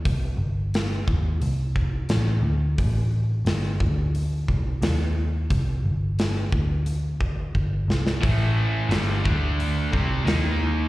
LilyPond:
<<
  \new Staff \with { instrumentName = "Distorted electric guitar" } { \clef bass \time 4/4 \key a \minor \tempo 4 = 88 r1 | r1 | r1 | <a, e a>4 <g, d g>8 <d a d'>4 <c g c'>8 <dis ais dis'>4 | }
  \new Staff \with { instrumentName = "Picked electric bass" } { \clef bass \time 4/4 \key a \minor c,8 g,,4 dis,8 c,4 a,,8 d,8 | a,,4 g,,8 d,4 c,8 dis,4 | c,8 g,,4 d,4. g,,8 c,8 | a,,4 g,,8 d,4 c,8 dis,4 | }
  \new DrumStaff \with { instrumentName = "Drums" } \drummode { \time 4/4 <hho bd>4 <hho sn>8 bd8 hho8 bd8 <hho sn>4 | <hho bd>4 <hho sn>8 bd8 hho8 bd8 <hho sn>4 | <hho bd>4 <hho sn>8 bd8 hho8 bd8 bd8 sn16 sn16 | <hho bd>4 <hho sn>8 bd8 hho8 bd8 <hho sn>4 | }
>>